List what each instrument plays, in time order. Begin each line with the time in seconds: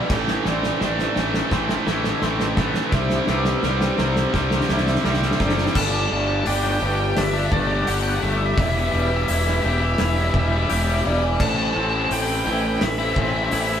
Already playing: distorted electric guitar E3, clean electric guitar E3 G3 E4 G4, string section G4, vibraphone D5
0.10 fingered electric bass A1, distorted electric guitar A2 E3 A3, string section C3 A3, vibraphone A4, kick, snare, crash
0.28 snare
0.45 fingered electric bass A1, distorted electric guitar A2 E3 A3, clean electric guitar C4, vibraphone D5, snare
0.63 snare
0.81 fingered electric bass A1, distorted electric guitar A2 E3 A3, snare
0.99 snare
1.16 fingered electric bass A1, distorted electric guitar A2 E3 A3, vibraphone C5, snare
1.34 snare
1.51 fingered electric bass A1, distorted electric guitar A2 E3 A3, clean electric guitar C4, kick, snare
1.69 snare
1.86 fingered electric bass A1, distorted electric guitar A2 E3 A3, clean electric guitar E4, snare
2.04 snare
2.21 fingered electric bass A1, distorted electric guitar A2 E3 A3, clean electric guitar C4, snare
2.40 snare
2.57 distorted electric guitar A2 E3 A3, clean electric guitar B3, vibraphone B4, kick, snare
2.74 snare
2.92 fingered electric bass C2, distorted electric guitar C3 G3 C4, string section E3, vibraphone E5, kick, snare
3.10 snare
3.27 fingered electric bass C2, distorted electric guitar C3 G3 C4, vibraphone B4, snare
3.45 snare
3.63 fingered electric bass C2, distorted electric guitar C3 G3 C4, snare
3.81 snare
3.98 fingered electric bass C2, distorted electric guitar C3 G3 C4, clean electric guitar E3, snare
4.16 snare
4.33 fingered electric bass C2, distorted electric guitar C3 G3 C4, kick, snare
4.51 snare
4.61 snare
4.69 fingered electric bass C2, distorted electric guitar C3 G3 C4, clean electric guitar E4, vibraphone E5, snare
4.78 snare
4.87 snare
4.95 snare
5.04 fingered electric bass C2, distorted electric guitar C3 G3 C4, snare
5.13 snare
5.22 snare
5.31 snare
5.39 fingered electric bass F#1, distorted electric guitar C3 G3 C4, vibraphone D5, kick, snare
5.49 snare
5.58 snare
5.66 snare
5.74 fingered electric bass G1, distorted electric guitar G3 A3 D4 G4, string section G4 D5 A5, vibraphone A4, lead electric guitar A5, kick, crash
5.84 lead electric guitar A5
5.92 lead electric guitar A5
6.01 lead electric guitar A5
6.11 fingered electric bass G1, clean electric guitar A3, vibraphone D5, lead electric guitar A5
6.20 lead electric guitar A5
6.27 distorted electric guitar A3 D4 G4, lead electric guitar A5
6.34 lead electric guitar A5
6.41 lead electric guitar A5
6.46 fingered electric bass G1, distorted electric guitar G3 A3 D4 G4, lead electric guitar G5, open hi-hat
6.56 lead electric guitar G5
6.63 lead electric guitar G5, snare
6.72 lead electric guitar G5
6.80 fingered electric bass G1, distorted electric guitar G3 A3 D4 G4, vibraphone B4, lead electric guitar G5
6.87 lead electric guitar G5
6.96 lead electric guitar G5, muted distorted electric guitar stroke
7.04 lead electric guitar G5
7.12 lead electric guitar G5
7.16 fingered electric bass G1, clean electric guitar D4, lead electric guitar E5, snare, open hi-hat
7.24 lead electric guitar E5
7.31 distorted electric guitar D4 G4, lead electric guitar E5
7.36 distorted electric guitar A3, lead electric guitar E5
7.45 lead electric guitar E5
7.51 fingered electric bass G1, distorted electric guitar G3 A3 D4 G4, lead electric guitar D5, kick
7.60 lead electric guitar D5
7.67 distorted electric guitar A3 D4 G4, lead electric guitar D5
7.75 lead electric guitar D5
7.82 lead electric guitar D5
7.86 fingered electric bass G1, distorted electric guitar G3 A3 D4 G4, lead electric guitar F#5, open hi-hat
7.94 lead electric guitar F#5
8.02 lead electric guitar F#5
8.09 lead electric guitar F#5
8.17 lead electric guitar F#5
8.21 fingered electric bass G1, distorted electric guitar G3 A3 D4 G4, vibraphone A4, lead electric guitar E5
8.30 lead electric guitar E5
8.37 lead electric guitar E5, muted distorted electric guitar stroke
8.46 lead electric guitar E5
8.54 distorted electric guitar E3, lead electric guitar E5, open hi-hat
8.58 fingered electric bass E1, clean electric guitar E2, distorted electric guitar B3 E4 G4, string section E5 B5, vibraphone E5, lead electric guitar E5, kick
8.69 lead electric guitar E5
8.77 lead electric guitar E5
8.85 lead electric guitar E5
8.92 fingered electric bass E1, clean electric guitar G3, vibraphone B4, lead electric guitar E5
9.01 lead electric guitar E5
9.08 distorted electric guitar E4 G4, lead electric guitar E5
9.12 distorted electric guitar B3, lead electric guitar E5
9.23 lead electric guitar E5
9.27 fingered electric bass E1, distorted electric guitar E3 B3 E4 G4, lead electric guitar E5, open hi-hat
9.39 lead electric guitar E5
9.46 lead electric guitar E5, snare
9.54 lead electric guitar E5
9.62 fingered electric bass E1, distorted electric guitar E3 B3 E4 G4, lead electric guitar E5
9.70 lead electric guitar E5
9.78 lead electric guitar E5, muted distorted electric guitar stroke
9.85 lead electric guitar E5
9.94 lead electric guitar E5
9.98 fingered electric bass E1, clean electric guitar E4, lead electric guitar E5, snare, open hi-hat
10.08 lead electric guitar E5
10.15 distorted electric guitar B3 E4 G4, lead electric guitar E5
10.24 lead electric guitar E5
10.31 fingered electric bass E1, distorted electric guitar E3 B3 E4, lead electric guitar E5, vibraphone E5, kick
10.35 clean electric guitar G3, distorted electric guitar G4, lead electric guitar E5
10.48 distorted electric guitar G4, lead electric guitar E5
10.52 distorted electric guitar B3 E4, lead electric guitar E5
10.62 lead electric guitar E5
10.68 fingered electric bass E1, distorted electric guitar E3 B3 E4 G4, lead electric guitar E5, open hi-hat
10.78 lead electric guitar E5
10.85 lead electric guitar E5
10.94 lead electric guitar E5
11.04 fingered electric bass E1, distorted electric guitar E3 B3 E4 G4, clean electric guitar G3, vibraphone D5
11.22 muted distorted electric guitar stroke
11.39 fingered electric bass A1, distorted electric guitar A2 E3 A3 C4 E4, string section C4 A4, vibraphone A4, lead electric guitar A5, kick, crash
11.49 lead electric guitar A5
11.58 lead electric guitar A5
11.65 lead electric guitar A5
11.73 fingered electric bass A1, clean electric guitar C4, vibraphone C5, lead electric guitar A5
11.81 lead electric guitar A5
11.89 distorted electric guitar E4, lead electric guitar A5
11.94 distorted electric guitar A3 C4, lead electric guitar A5
12.04 lead electric guitar A5
12.10 fingered electric bass A1, distorted electric guitar A2 E3 A3 C4 E4, lead electric guitar G5, open hi-hat
12.22 lead electric guitar G5
12.28 lead electric guitar G5
12.37 lead electric guitar G5
12.45 fingered electric bass A1, distorted electric guitar E3 A3 C4 E4, vibraphone B4, lead electric guitar G5
12.53 lead electric guitar G5
12.61 lead electric guitar G5, muted distorted electric guitar stroke
12.68 lead electric guitar G5
12.77 lead electric guitar G5
12.81 fingered electric bass A1, lead electric guitar E5, snare, open hi-hat
12.90 lead electric guitar E5
12.98 distorted electric guitar A3 C4 E4, lead electric guitar E5
13.05 lead electric guitar E5
13.14 fingered electric bass A1, distorted electric guitar E3, lead electric guitar E5, kick
13.18 distorted electric guitar A3 C4 E4, lead electric guitar E5
13.29 lead electric guitar E5
13.34 distorted electric guitar A3 C4 E4, lead electric guitar E5
13.44 lead electric guitar E5
13.51 fingered electric bass A1, distorted electric guitar A2 E3 A3 C4 E4, lead electric guitar E5, open hi-hat
13.61 lead electric guitar E5
13.67 lead electric guitar E5
13.74 lead electric guitar E5